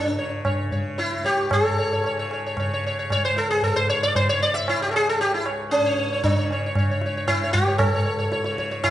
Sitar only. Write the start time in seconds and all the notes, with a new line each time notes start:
Already playing: D4
0.19 C#5
0.45 C#5
0.72 C#5
0.98 E4 C#5
1.25 G4 C#5
1.53 A4
1.65 C#5
1.78 C#5
1.93 C#5
2.06 C#5
2.19 C#5
2.33 C#5
2.46 C#5
2.60 C#5
2.73 C#5
2.87 C#5
2.99 C#5
3.12 C#5
3.25 C5
3.38 A4
3.50 G#4
3.64 A4
3.76 C5
3.89 C#5
4.03 D5
4.16 C5
4.29 C#5
4.42 D5
4.54 E5
4.69 E4
4.82 G4
4.91 A4
4.96 G#4
5.09 A4
5.21 G4
5.34 E4
5.46 C#5
5.71 C#4
5.86 C#5
5.98 C#5
6.12 C#5
6.24 D4
6.39 C#5
6.52 C#5
6.66 C#5
6.79 C#5
6.91 C#5
7.06 C#5
7.17 C#5
7.28 E4
7.44 C#5
7.53 G4
7.68 C#5
7.78 A4
7.94 C#5
8.06 C#5
8.19 C#5
8.32 C#5
8.45 C#5
8.59 C#5
8.72 C#5
8.84 E4